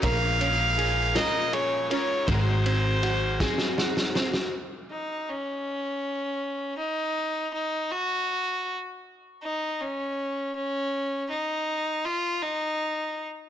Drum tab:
RD |x-x-x-x-x-x-|x-x-x-------|------------|------------|
SD |------o-----|------oooooo|------------|------------|
BD |o-----------|o-----o-----|------------|------------|

RD |------------|------------|
SD |------------|------------|
BD |------------|------------|